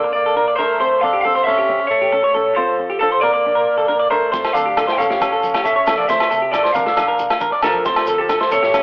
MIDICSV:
0, 0, Header, 1, 9, 480
1, 0, Start_track
1, 0, Key_signature, -1, "major"
1, 0, Tempo, 440529
1, 881, Time_signature, 4, 2, 24, 8
1, 9620, End_track
2, 0, Start_track
2, 0, Title_t, "Clean electric guitar"
2, 0, Program_c, 0, 27
2, 0, Note_on_c, 0, 74, 99
2, 123, Note_off_c, 0, 74, 0
2, 140, Note_on_c, 0, 74, 90
2, 603, Note_off_c, 0, 74, 0
2, 608, Note_on_c, 0, 72, 103
2, 1098, Note_off_c, 0, 72, 0
2, 1103, Note_on_c, 0, 77, 104
2, 1308, Note_off_c, 0, 77, 0
2, 1321, Note_on_c, 0, 77, 110
2, 1563, Note_off_c, 0, 77, 0
2, 1567, Note_on_c, 0, 76, 108
2, 2029, Note_off_c, 0, 76, 0
2, 2039, Note_on_c, 0, 73, 99
2, 2774, Note_on_c, 0, 69, 87
2, 2802, Note_off_c, 0, 73, 0
2, 3248, Note_off_c, 0, 69, 0
2, 3261, Note_on_c, 0, 69, 91
2, 3493, Note_off_c, 0, 69, 0
2, 3497, Note_on_c, 0, 74, 94
2, 4470, Note_off_c, 0, 74, 0
2, 4475, Note_on_c, 0, 72, 85
2, 4934, Note_off_c, 0, 72, 0
2, 4938, Note_on_c, 0, 77, 94
2, 5323, Note_off_c, 0, 77, 0
2, 5362, Note_on_c, 0, 79, 69
2, 5424, Note_off_c, 0, 79, 0
2, 5428, Note_on_c, 0, 77, 102
2, 6109, Note_off_c, 0, 77, 0
2, 6159, Note_on_c, 0, 76, 86
2, 6494, Note_off_c, 0, 76, 0
2, 6512, Note_on_c, 0, 74, 87
2, 6620, Note_off_c, 0, 74, 0
2, 6625, Note_on_c, 0, 76, 101
2, 7077, Note_off_c, 0, 76, 0
2, 7100, Note_on_c, 0, 74, 91
2, 7327, Note_off_c, 0, 74, 0
2, 7331, Note_on_c, 0, 77, 87
2, 8022, Note_off_c, 0, 77, 0
2, 8324, Note_on_c, 0, 69, 85
2, 8903, Note_off_c, 0, 69, 0
2, 8916, Note_on_c, 0, 69, 91
2, 9285, Note_on_c, 0, 73, 101
2, 9289, Note_off_c, 0, 69, 0
2, 9620, Note_off_c, 0, 73, 0
2, 9620, End_track
3, 0, Start_track
3, 0, Title_t, "Clean electric guitar"
3, 0, Program_c, 1, 27
3, 285, Note_on_c, 1, 69, 69
3, 397, Note_off_c, 1, 69, 0
3, 402, Note_on_c, 1, 70, 81
3, 516, Note_off_c, 1, 70, 0
3, 522, Note_on_c, 1, 74, 74
3, 634, Note_off_c, 1, 74, 0
3, 639, Note_on_c, 1, 70, 75
3, 868, Note_off_c, 1, 70, 0
3, 878, Note_on_c, 1, 72, 97
3, 1108, Note_off_c, 1, 72, 0
3, 1120, Note_on_c, 1, 69, 71
3, 1230, Note_on_c, 1, 67, 69
3, 1235, Note_off_c, 1, 69, 0
3, 1350, Note_off_c, 1, 67, 0
3, 1359, Note_on_c, 1, 69, 78
3, 1471, Note_off_c, 1, 69, 0
3, 1475, Note_on_c, 1, 72, 72
3, 1592, Note_off_c, 1, 72, 0
3, 1599, Note_on_c, 1, 69, 79
3, 1714, Note_off_c, 1, 69, 0
3, 1718, Note_on_c, 1, 67, 67
3, 1948, Note_off_c, 1, 67, 0
3, 2196, Note_on_c, 1, 67, 70
3, 2312, Note_off_c, 1, 67, 0
3, 2314, Note_on_c, 1, 69, 78
3, 2431, Note_off_c, 1, 69, 0
3, 2439, Note_on_c, 1, 73, 76
3, 2551, Note_off_c, 1, 73, 0
3, 2555, Note_on_c, 1, 69, 73
3, 2785, Note_off_c, 1, 69, 0
3, 2793, Note_on_c, 1, 72, 89
3, 3024, Note_off_c, 1, 72, 0
3, 3156, Note_on_c, 1, 67, 68
3, 3272, Note_off_c, 1, 67, 0
3, 3277, Note_on_c, 1, 69, 81
3, 3392, Note_off_c, 1, 69, 0
3, 3399, Note_on_c, 1, 72, 71
3, 3513, Note_off_c, 1, 72, 0
3, 3520, Note_on_c, 1, 70, 71
3, 3629, Note_off_c, 1, 70, 0
3, 3633, Note_on_c, 1, 74, 61
3, 3864, Note_off_c, 1, 74, 0
3, 3871, Note_on_c, 1, 70, 72
3, 4103, Note_off_c, 1, 70, 0
3, 4115, Note_on_c, 1, 69, 63
3, 4227, Note_off_c, 1, 69, 0
3, 4231, Note_on_c, 1, 70, 72
3, 4349, Note_off_c, 1, 70, 0
3, 4354, Note_on_c, 1, 74, 76
3, 4469, Note_off_c, 1, 74, 0
3, 4473, Note_on_c, 1, 70, 75
3, 4703, Note_off_c, 1, 70, 0
3, 4708, Note_on_c, 1, 72, 94
3, 4941, Note_off_c, 1, 72, 0
3, 4953, Note_on_c, 1, 69, 73
3, 5070, Note_off_c, 1, 69, 0
3, 5075, Note_on_c, 1, 67, 67
3, 5191, Note_off_c, 1, 67, 0
3, 5200, Note_on_c, 1, 69, 84
3, 5306, Note_off_c, 1, 69, 0
3, 5310, Note_on_c, 1, 72, 74
3, 5428, Note_off_c, 1, 72, 0
3, 5440, Note_on_c, 1, 69, 78
3, 5553, Note_off_c, 1, 69, 0
3, 5559, Note_on_c, 1, 67, 69
3, 5787, Note_off_c, 1, 67, 0
3, 5801, Note_on_c, 1, 69, 75
3, 6027, Note_off_c, 1, 69, 0
3, 6037, Note_on_c, 1, 67, 61
3, 6151, Note_off_c, 1, 67, 0
3, 6156, Note_on_c, 1, 69, 76
3, 6270, Note_off_c, 1, 69, 0
3, 6275, Note_on_c, 1, 73, 78
3, 6389, Note_off_c, 1, 73, 0
3, 6393, Note_on_c, 1, 69, 76
3, 6624, Note_off_c, 1, 69, 0
3, 6641, Note_on_c, 1, 72, 90
3, 6868, Note_off_c, 1, 72, 0
3, 6874, Note_on_c, 1, 69, 77
3, 6990, Note_off_c, 1, 69, 0
3, 6995, Note_on_c, 1, 67, 69
3, 7111, Note_off_c, 1, 67, 0
3, 7113, Note_on_c, 1, 69, 88
3, 7229, Note_off_c, 1, 69, 0
3, 7234, Note_on_c, 1, 72, 71
3, 7350, Note_off_c, 1, 72, 0
3, 7355, Note_on_c, 1, 70, 80
3, 7471, Note_off_c, 1, 70, 0
3, 7477, Note_on_c, 1, 69, 67
3, 7706, Note_off_c, 1, 69, 0
3, 7716, Note_on_c, 1, 70, 72
3, 7945, Note_off_c, 1, 70, 0
3, 8078, Note_on_c, 1, 70, 85
3, 8193, Note_off_c, 1, 70, 0
3, 8198, Note_on_c, 1, 74, 77
3, 8313, Note_off_c, 1, 74, 0
3, 8319, Note_on_c, 1, 70, 72
3, 8547, Note_off_c, 1, 70, 0
3, 8561, Note_on_c, 1, 72, 91
3, 8789, Note_off_c, 1, 72, 0
3, 8802, Note_on_c, 1, 69, 81
3, 8915, Note_off_c, 1, 69, 0
3, 8922, Note_on_c, 1, 67, 65
3, 9036, Note_off_c, 1, 67, 0
3, 9039, Note_on_c, 1, 69, 82
3, 9154, Note_off_c, 1, 69, 0
3, 9160, Note_on_c, 1, 72, 76
3, 9274, Note_off_c, 1, 72, 0
3, 9281, Note_on_c, 1, 69, 76
3, 9394, Note_on_c, 1, 67, 65
3, 9395, Note_off_c, 1, 69, 0
3, 9620, Note_off_c, 1, 67, 0
3, 9620, End_track
4, 0, Start_track
4, 0, Title_t, "Nylon-string guitar"
4, 0, Program_c, 2, 24
4, 392, Note_on_c, 2, 62, 81
4, 537, Note_off_c, 2, 62, 0
4, 643, Note_on_c, 2, 62, 71
4, 785, Note_off_c, 2, 62, 0
4, 886, Note_on_c, 2, 60, 85
4, 1027, Note_off_c, 2, 60, 0
4, 1123, Note_on_c, 2, 60, 78
4, 1265, Note_off_c, 2, 60, 0
4, 1363, Note_on_c, 2, 62, 79
4, 1505, Note_off_c, 2, 62, 0
4, 1604, Note_on_c, 2, 60, 78
4, 1745, Note_off_c, 2, 60, 0
4, 1840, Note_on_c, 2, 61, 89
4, 1983, Note_off_c, 2, 61, 0
4, 2317, Note_on_c, 2, 61, 76
4, 2460, Note_off_c, 2, 61, 0
4, 2568, Note_on_c, 2, 61, 80
4, 2708, Note_off_c, 2, 61, 0
4, 2806, Note_on_c, 2, 60, 86
4, 2946, Note_off_c, 2, 60, 0
4, 3040, Note_on_c, 2, 60, 75
4, 3182, Note_off_c, 2, 60, 0
4, 3291, Note_on_c, 2, 62, 73
4, 3430, Note_off_c, 2, 62, 0
4, 3524, Note_on_c, 2, 60, 73
4, 3665, Note_off_c, 2, 60, 0
4, 3771, Note_on_c, 2, 62, 97
4, 3910, Note_off_c, 2, 62, 0
4, 4235, Note_on_c, 2, 62, 77
4, 4378, Note_off_c, 2, 62, 0
4, 4485, Note_on_c, 2, 62, 80
4, 4625, Note_off_c, 2, 62, 0
4, 4721, Note_on_c, 2, 60, 86
4, 4862, Note_off_c, 2, 60, 0
4, 4962, Note_on_c, 2, 60, 79
4, 5103, Note_off_c, 2, 60, 0
4, 5201, Note_on_c, 2, 62, 74
4, 5343, Note_off_c, 2, 62, 0
4, 5438, Note_on_c, 2, 60, 71
4, 5580, Note_off_c, 2, 60, 0
4, 5672, Note_on_c, 2, 61, 89
4, 5816, Note_off_c, 2, 61, 0
4, 6150, Note_on_c, 2, 61, 77
4, 6295, Note_off_c, 2, 61, 0
4, 6394, Note_on_c, 2, 61, 78
4, 6537, Note_off_c, 2, 61, 0
4, 6631, Note_on_c, 2, 60, 84
4, 6776, Note_off_c, 2, 60, 0
4, 6871, Note_on_c, 2, 60, 76
4, 7015, Note_off_c, 2, 60, 0
4, 7115, Note_on_c, 2, 62, 74
4, 7258, Note_off_c, 2, 62, 0
4, 7356, Note_on_c, 2, 60, 81
4, 7499, Note_off_c, 2, 60, 0
4, 7590, Note_on_c, 2, 62, 95
4, 7735, Note_off_c, 2, 62, 0
4, 8069, Note_on_c, 2, 62, 76
4, 8215, Note_off_c, 2, 62, 0
4, 8311, Note_on_c, 2, 62, 81
4, 8456, Note_off_c, 2, 62, 0
4, 8553, Note_on_c, 2, 60, 101
4, 8698, Note_off_c, 2, 60, 0
4, 8795, Note_on_c, 2, 60, 79
4, 8939, Note_off_c, 2, 60, 0
4, 9032, Note_on_c, 2, 62, 74
4, 9177, Note_off_c, 2, 62, 0
4, 9276, Note_on_c, 2, 60, 73
4, 9420, Note_off_c, 2, 60, 0
4, 9523, Note_on_c, 2, 61, 93
4, 9620, Note_off_c, 2, 61, 0
4, 9620, End_track
5, 0, Start_track
5, 0, Title_t, "Tenor saxophone"
5, 0, Program_c, 3, 66
5, 0, Note_on_c, 3, 58, 80
5, 137, Note_off_c, 3, 58, 0
5, 158, Note_on_c, 3, 58, 81
5, 606, Note_off_c, 3, 58, 0
5, 643, Note_on_c, 3, 57, 74
5, 1089, Note_off_c, 3, 57, 0
5, 1126, Note_on_c, 3, 62, 87
5, 1347, Note_off_c, 3, 62, 0
5, 1366, Note_on_c, 3, 60, 82
5, 1587, Note_off_c, 3, 60, 0
5, 1598, Note_on_c, 3, 61, 91
5, 2046, Note_off_c, 3, 61, 0
5, 2069, Note_on_c, 3, 57, 82
5, 2751, Note_off_c, 3, 57, 0
5, 2785, Note_on_c, 3, 53, 79
5, 3238, Note_off_c, 3, 53, 0
5, 3273, Note_on_c, 3, 53, 76
5, 3499, Note_off_c, 3, 53, 0
5, 3511, Note_on_c, 3, 58, 92
5, 4431, Note_off_c, 3, 58, 0
5, 4463, Note_on_c, 3, 57, 70
5, 4917, Note_off_c, 3, 57, 0
5, 4943, Note_on_c, 3, 62, 78
5, 5325, Note_off_c, 3, 62, 0
5, 5369, Note_on_c, 3, 64, 61
5, 5418, Note_off_c, 3, 64, 0
5, 5424, Note_on_c, 3, 61, 78
5, 6108, Note_off_c, 3, 61, 0
5, 6139, Note_on_c, 3, 61, 72
5, 6482, Note_off_c, 3, 61, 0
5, 6512, Note_on_c, 3, 58, 73
5, 6627, Note_off_c, 3, 58, 0
5, 6632, Note_on_c, 3, 57, 75
5, 6990, Note_off_c, 3, 57, 0
5, 7124, Note_on_c, 3, 57, 68
5, 7345, Note_off_c, 3, 57, 0
5, 7354, Note_on_c, 3, 62, 69
5, 8034, Note_off_c, 3, 62, 0
5, 8339, Note_on_c, 3, 53, 71
5, 8889, Note_off_c, 3, 53, 0
5, 8918, Note_on_c, 3, 53, 66
5, 9255, Note_off_c, 3, 53, 0
5, 9289, Note_on_c, 3, 57, 78
5, 9620, Note_off_c, 3, 57, 0
5, 9620, End_track
6, 0, Start_track
6, 0, Title_t, "Fingered electric bass"
6, 0, Program_c, 4, 33
6, 4723, Note_on_c, 4, 29, 93
6, 4816, Note_off_c, 4, 29, 0
6, 4969, Note_on_c, 4, 38, 79
6, 5204, Note_on_c, 4, 36, 92
6, 5220, Note_off_c, 4, 38, 0
6, 5297, Note_off_c, 4, 36, 0
6, 5446, Note_on_c, 4, 29, 93
6, 5633, Note_off_c, 4, 29, 0
6, 5683, Note_on_c, 4, 28, 90
6, 6061, Note_off_c, 4, 28, 0
6, 6164, Note_on_c, 4, 28, 84
6, 6257, Note_off_c, 4, 28, 0
6, 6409, Note_on_c, 4, 37, 95
6, 6500, Note_off_c, 4, 37, 0
6, 6645, Note_on_c, 4, 38, 91
6, 6737, Note_off_c, 4, 38, 0
6, 6892, Note_on_c, 4, 48, 79
6, 7120, Note_on_c, 4, 33, 93
6, 7136, Note_off_c, 4, 48, 0
6, 7214, Note_off_c, 4, 33, 0
6, 7365, Note_on_c, 4, 36, 91
6, 7553, Note_off_c, 4, 36, 0
6, 7600, Note_on_c, 4, 34, 88
6, 7980, Note_off_c, 4, 34, 0
6, 8080, Note_on_c, 4, 34, 82
6, 8175, Note_off_c, 4, 34, 0
6, 8324, Note_on_c, 4, 30, 99
6, 8417, Note_off_c, 4, 30, 0
6, 8563, Note_on_c, 4, 29, 103
6, 8657, Note_off_c, 4, 29, 0
6, 8802, Note_on_c, 4, 38, 86
6, 9048, Note_off_c, 4, 38, 0
6, 9048, Note_on_c, 4, 36, 94
6, 9140, Note_off_c, 4, 36, 0
6, 9278, Note_on_c, 4, 29, 97
6, 9469, Note_off_c, 4, 29, 0
6, 9524, Note_on_c, 4, 28, 90
6, 9620, Note_off_c, 4, 28, 0
6, 9620, End_track
7, 0, Start_track
7, 0, Title_t, "Muted clean electric guitar strokes"
7, 46, Note_on_c, 9, 29, 78
7, 155, Note_off_c, 9, 29, 0
7, 1957, Note_on_c, 9, 29, 65
7, 2066, Note_off_c, 9, 29, 0
7, 9620, End_track
8, 0, Start_track
8, 0, Title_t, "Shekere"
8, 4722, Note_on_c, 9, 82, 92
8, 4831, Note_off_c, 9, 82, 0
8, 4962, Note_on_c, 9, 82, 72
8, 5071, Note_off_c, 9, 82, 0
8, 5207, Note_on_c, 9, 82, 94
8, 5316, Note_off_c, 9, 82, 0
8, 5450, Note_on_c, 9, 82, 74
8, 5559, Note_off_c, 9, 82, 0
8, 5686, Note_on_c, 9, 82, 87
8, 5794, Note_off_c, 9, 82, 0
8, 5920, Note_on_c, 9, 82, 66
8, 6029, Note_off_c, 9, 82, 0
8, 6162, Note_on_c, 9, 82, 84
8, 6271, Note_off_c, 9, 82, 0
8, 6392, Note_on_c, 9, 82, 59
8, 6501, Note_off_c, 9, 82, 0
8, 6631, Note_on_c, 9, 82, 89
8, 6740, Note_off_c, 9, 82, 0
8, 6877, Note_on_c, 9, 82, 72
8, 6986, Note_off_c, 9, 82, 0
8, 7119, Note_on_c, 9, 82, 89
8, 7228, Note_off_c, 9, 82, 0
8, 7351, Note_on_c, 9, 82, 71
8, 7460, Note_off_c, 9, 82, 0
8, 7595, Note_on_c, 9, 82, 87
8, 7704, Note_off_c, 9, 82, 0
8, 7834, Note_on_c, 9, 82, 76
8, 7943, Note_off_c, 9, 82, 0
8, 8068, Note_on_c, 9, 82, 91
8, 8177, Note_off_c, 9, 82, 0
8, 8310, Note_on_c, 9, 82, 67
8, 8419, Note_off_c, 9, 82, 0
8, 8552, Note_on_c, 9, 82, 104
8, 8661, Note_off_c, 9, 82, 0
8, 8790, Note_on_c, 9, 82, 87
8, 8899, Note_off_c, 9, 82, 0
8, 9038, Note_on_c, 9, 82, 102
8, 9147, Note_off_c, 9, 82, 0
8, 9275, Note_on_c, 9, 82, 76
8, 9384, Note_off_c, 9, 82, 0
8, 9518, Note_on_c, 9, 82, 106
8, 9620, Note_off_c, 9, 82, 0
8, 9620, End_track
9, 0, Start_track
9, 0, Title_t, "Drums"
9, 4723, Note_on_c, 9, 36, 85
9, 4724, Note_on_c, 9, 38, 66
9, 4832, Note_off_c, 9, 36, 0
9, 4833, Note_off_c, 9, 38, 0
9, 4844, Note_on_c, 9, 68, 60
9, 4846, Note_on_c, 9, 38, 64
9, 4953, Note_off_c, 9, 68, 0
9, 4955, Note_off_c, 9, 38, 0
9, 5200, Note_on_c, 9, 68, 63
9, 5203, Note_on_c, 9, 36, 76
9, 5204, Note_on_c, 9, 38, 59
9, 5309, Note_off_c, 9, 68, 0
9, 5312, Note_off_c, 9, 36, 0
9, 5313, Note_off_c, 9, 38, 0
9, 5321, Note_on_c, 9, 38, 68
9, 5430, Note_off_c, 9, 38, 0
9, 5447, Note_on_c, 9, 63, 69
9, 5447, Note_on_c, 9, 64, 73
9, 5556, Note_off_c, 9, 63, 0
9, 5556, Note_off_c, 9, 64, 0
9, 5562, Note_on_c, 9, 38, 68
9, 5671, Note_off_c, 9, 38, 0
9, 5683, Note_on_c, 9, 36, 86
9, 5684, Note_on_c, 9, 68, 70
9, 5685, Note_on_c, 9, 38, 61
9, 5792, Note_off_c, 9, 36, 0
9, 5793, Note_off_c, 9, 68, 0
9, 5794, Note_off_c, 9, 38, 0
9, 5927, Note_on_c, 9, 63, 68
9, 5927, Note_on_c, 9, 64, 70
9, 6036, Note_off_c, 9, 63, 0
9, 6036, Note_off_c, 9, 64, 0
9, 6041, Note_on_c, 9, 68, 62
9, 6044, Note_on_c, 9, 38, 71
9, 6150, Note_off_c, 9, 68, 0
9, 6153, Note_off_c, 9, 38, 0
9, 6162, Note_on_c, 9, 36, 83
9, 6271, Note_off_c, 9, 36, 0
9, 6400, Note_on_c, 9, 64, 81
9, 6401, Note_on_c, 9, 68, 66
9, 6402, Note_on_c, 9, 38, 77
9, 6509, Note_off_c, 9, 64, 0
9, 6510, Note_off_c, 9, 68, 0
9, 6511, Note_off_c, 9, 38, 0
9, 6524, Note_on_c, 9, 63, 83
9, 6633, Note_off_c, 9, 63, 0
9, 6643, Note_on_c, 9, 36, 87
9, 6648, Note_on_c, 9, 38, 67
9, 6752, Note_off_c, 9, 36, 0
9, 6757, Note_off_c, 9, 38, 0
9, 6759, Note_on_c, 9, 68, 63
9, 6769, Note_on_c, 9, 38, 73
9, 6868, Note_off_c, 9, 68, 0
9, 6878, Note_off_c, 9, 38, 0
9, 7121, Note_on_c, 9, 36, 82
9, 7122, Note_on_c, 9, 38, 62
9, 7124, Note_on_c, 9, 68, 64
9, 7230, Note_off_c, 9, 36, 0
9, 7231, Note_off_c, 9, 38, 0
9, 7233, Note_off_c, 9, 68, 0
9, 7246, Note_on_c, 9, 38, 67
9, 7355, Note_off_c, 9, 38, 0
9, 7368, Note_on_c, 9, 63, 69
9, 7368, Note_on_c, 9, 64, 77
9, 7477, Note_off_c, 9, 63, 0
9, 7477, Note_off_c, 9, 64, 0
9, 7480, Note_on_c, 9, 38, 71
9, 7589, Note_off_c, 9, 38, 0
9, 7596, Note_on_c, 9, 38, 63
9, 7596, Note_on_c, 9, 68, 67
9, 7598, Note_on_c, 9, 36, 86
9, 7705, Note_off_c, 9, 38, 0
9, 7705, Note_off_c, 9, 68, 0
9, 7707, Note_off_c, 9, 36, 0
9, 7838, Note_on_c, 9, 63, 71
9, 7838, Note_on_c, 9, 64, 68
9, 7947, Note_off_c, 9, 63, 0
9, 7947, Note_off_c, 9, 64, 0
9, 7959, Note_on_c, 9, 68, 67
9, 7960, Note_on_c, 9, 38, 73
9, 8068, Note_off_c, 9, 68, 0
9, 8069, Note_off_c, 9, 38, 0
9, 8080, Note_on_c, 9, 36, 90
9, 8189, Note_off_c, 9, 36, 0
9, 8309, Note_on_c, 9, 68, 72
9, 8319, Note_on_c, 9, 64, 70
9, 8326, Note_on_c, 9, 38, 75
9, 8418, Note_off_c, 9, 68, 0
9, 8428, Note_off_c, 9, 64, 0
9, 8435, Note_off_c, 9, 38, 0
9, 8440, Note_on_c, 9, 63, 67
9, 8549, Note_off_c, 9, 63, 0
9, 8562, Note_on_c, 9, 36, 90
9, 8564, Note_on_c, 9, 38, 69
9, 8671, Note_off_c, 9, 36, 0
9, 8673, Note_off_c, 9, 38, 0
9, 8678, Note_on_c, 9, 68, 65
9, 8687, Note_on_c, 9, 38, 73
9, 8787, Note_off_c, 9, 68, 0
9, 8795, Note_off_c, 9, 38, 0
9, 9037, Note_on_c, 9, 68, 67
9, 9041, Note_on_c, 9, 36, 85
9, 9041, Note_on_c, 9, 38, 63
9, 9146, Note_off_c, 9, 68, 0
9, 9150, Note_off_c, 9, 36, 0
9, 9150, Note_off_c, 9, 38, 0
9, 9163, Note_on_c, 9, 38, 75
9, 9272, Note_off_c, 9, 38, 0
9, 9285, Note_on_c, 9, 63, 71
9, 9285, Note_on_c, 9, 64, 64
9, 9394, Note_off_c, 9, 63, 0
9, 9394, Note_off_c, 9, 64, 0
9, 9402, Note_on_c, 9, 38, 63
9, 9511, Note_off_c, 9, 38, 0
9, 9522, Note_on_c, 9, 36, 78
9, 9522, Note_on_c, 9, 38, 67
9, 9523, Note_on_c, 9, 68, 69
9, 9620, Note_off_c, 9, 36, 0
9, 9620, Note_off_c, 9, 38, 0
9, 9620, Note_off_c, 9, 68, 0
9, 9620, End_track
0, 0, End_of_file